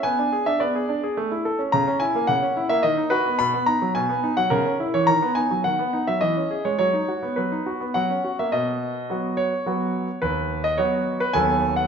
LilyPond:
<<
  \new Staff \with { instrumentName = "Grand piano" } { \time 3/4 \key gis \phrygian \tempo 4 = 107 gis''8. e''16 d''4 r4 | \key b \major ais''8 gis''8 fis''8. e''16 dis''8 b'8 | b''8 ais''8 gis''8. fis''16 ais'8. cis''16 | ais''8 gis''8 fis''8. e''16 dis''8. cis''16 |
cis''4 b'4 fis''8. e''16 | dis''4. cis''4. | b'8. dis''16 cis''8. b'16 gis''8. fis''16 | }
  \new Staff \with { instrumentName = "Grand piano" } { \time 3/4 \key gis \phrygian b16 d'16 gis'16 d'16 b16 gis'16 d'16 gis'16 a16 e'16 a'16 cis'16 | \key b \major cis16 cis'16 e'16 ais16 cis16 cis'16 e'16 ais16 dis16 dis'16 fis'16 b16 | b,16 b16 dis'16 fis16 b,16 b16 dis'16 fis16 cis16 cis'16 e'16 e16 | dis16 b16 dis'16 fis16 dis16 b16 dis'16 fis16 e16 cis'16 gis'16 gis16 |
fis16 dis'16 fis'16 b16 fis16 dis'16 fis'16 b16 fis16 cis'16 fis'16 ais16 | b,4 <fis b fis'>4 <fis b fis'>4 | dis,4 <fis b fis'>4 <dis, fis b a'>4 | }
>>